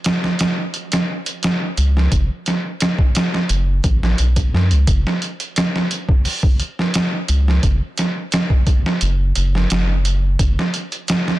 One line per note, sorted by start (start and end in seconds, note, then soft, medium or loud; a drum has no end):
0.04 snare loud
0.04 closed hi-hat medium
0.24 snare soft
0.39 snare loud
0.39 closed hi-hat medium
0.74 closed hi-hat medium
0.92 snare loud
0.92 closed hi-hat medium
1.26 closed hi-hat medium
1.43 snare loud
1.43 closed hi-hat medium
1.77 2.08 C#2 medium
1.77 closed hi-hat medium
1.97 snare soft
2.12 2.28 F#1 loud
2.12 kick loud
2.12 closed hi-hat medium
2.46 snare medium
2.46 closed hi-hat medium
2.80 snare loud
2.80 closed hi-hat medium
2.99 kick medium
3.15 snare medium
3.15 closed hi-hat medium
3.34 snare soft
3.49 3.80 F#1 loud
3.49 closed hi-hat medium
3.84 4.15 A1 loud
3.84 kick medium
3.84 closed hi-hat medium
4.03 snare soft
4.18 4.49 B1 medium
4.18 closed hi-hat medium
4.36 kick medium
4.36 closed hi-hat medium
4.53 4.73 F#2 medium
4.53 snare soft
4.71 4.86 C#2 medium
4.71 closed hi-hat medium
4.87 5.03 F#1 loud
4.87 kick loud
4.87 closed hi-hat medium
5.07 snare soft
5.22 closed hi-hat medium
5.40 closed hi-hat soft
5.56 snare loud
5.56 closed hi-hat medium
5.76 snare soft
5.91 closed hi-hat medium
6.09 kick medium
6.25 open hi-hat medium
6.43 kick medium
6.60 closed hi-hat medium
6.79 snare soft
6.94 snare loud
6.94 closed hi-hat medium
7.28 7.60 C#2 medium
7.28 closed hi-hat medium
7.48 snare soft
7.63 7.79 F#1 loud
7.63 kick medium
7.63 closed hi-hat medium
7.98 snare medium
7.98 closed hi-hat medium
8.32 snare loud
8.32 closed hi-hat medium
8.50 kick medium
8.67 kick medium
8.67 closed hi-hat medium
8.86 snare medium
9.01 9.32 F#1 loud
9.01 closed hi-hat medium
9.36 9.67 F#1 loud
9.36 closed hi-hat medium
9.55 snare soft
9.70 10.36 F#1 medium
9.70 snare loud
9.70 closed hi-hat medium
10.05 closed hi-hat medium
10.39 10.55 F#1 loud
10.39 kick loud
10.39 closed hi-hat medium
10.59 snare soft
10.74 closed hi-hat medium
10.92 closed hi-hat soft
11.08 snare loud
11.08 closed hi-hat medium
11.28 snare medium